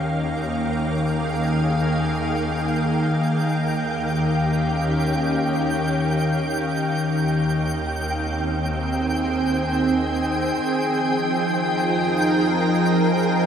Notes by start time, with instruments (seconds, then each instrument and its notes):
Already playing: double bass section D#2, ambient pad D#3 A#3 C#4 F5, synth texture G5
0.81 ambient pad G#4
3.14 double bass section D#2
3.80 ambient pad G4
4.34 ambient pad C#4
6.88 double bass section D#2
7.93 ambient pad C4
8.58 ambient pad G#4 G5
10.62 double bass section F2, ambient pad F3, synth texture G5
10.89 ambient pad D#4
11.54 ambient pad A#4